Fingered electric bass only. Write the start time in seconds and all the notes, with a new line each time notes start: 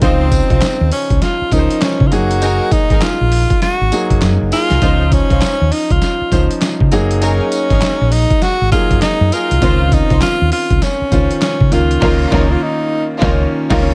0.02 C#2
0.51 C2
0.81 D#2
1.11 C#2
1.41 muted fingered electric bass stroke
1.52 C#2
2.01 C#3
2.12 F#1
2.90 G#1
3.21 A#1
3.81 G#1
4.11 F#1
4.22 F#2
4.41 F#1
4.71 C2
4.82 C#2
5.31 C2
5.61 D#2
5.91 C#2
6.21 muted fingered electric bass stroke
6.32 C#2
6.81 C#3
6.92 F#1
7.71 G#1
7.83 muted fingered electric bass stroke
8.01 A#1
8.61 G#1
8.91 F#1
9.21 F#2
9.51 C2
9.62 C#2
10.11 C2
10.41 D#2
10.71 C#2
11.01 muted fingered electric bass stroke
11.12 C#2
11.61 C#3
11.73 C#2
12.02 C#2
12.32 C#2
13.22 C#2
13.71 C#2